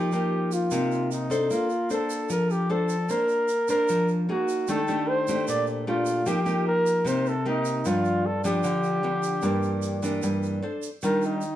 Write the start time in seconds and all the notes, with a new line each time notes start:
Already playing: F3 G4
0.12 A#3 D#4 G4, shaker
0.52 F4, shaker
0.71 C3 A#3 D#4 G4, shaker
0.92 shaker
1.11 D#4, shaker
1.30 D4 A4 C5, shaker
1.50 A#3 F4, shaker
1.70 shaker
1.90 D4 A4 C5, shaker
2.10 shaker
2.29 F3 A#4, shaker
2.50 G4, shaker
2.69 D4 A4 C5
2.89 shaker
3.09 A#3 D4 A#4 C5, shaker
3.28 shaker
3.48 shaker
3.68 D4 A#4 C5, shaker
3.88 F3, shaker
4.08 shaker
4.29 A#3 D#4 F#4 G#4
4.48 shaker
4.68 D#3 A3 D4 G4 A4, shaker
4.88 A3 D4 G4, shaker
5.09 C5
5.28 A3 D4 G4, shaker
5.48 A#2 D5, shaker
5.67 shaker
5.87 A3 D4 F4 G4
6.06 shaker
6.26 F3 A#3 D#4 G4, shaker
6.45 A#3 D#4 G4, shaker
6.67 A#4
6.86 shaker
7.05 C3 A#3 D#4 G4 C5, shaker
7.26 A4, shaker
7.45 A#3 D#4 G4
7.65 shaker
7.85 G2 F3 B3 D4 F4, shaker
8.05 shaker
8.26 A4
8.44 F3 B3 D4 G4, shaker
8.63 D3, shaker
8.83 shaker
9.03 F3 B3 D4
9.23 shaker
9.42 G2 E3 A#3 D4, shaker
9.63 shaker
9.82 shaker
10.02 E3 A#3 D4, shaker
10.22 G2, shaker
10.43 shaker
10.62 D4 A4 C5
10.82 shaker
11.02 D#3 G3 D4 F4 A#4, shaker
11.22 D#4, shaker
11.41 shaker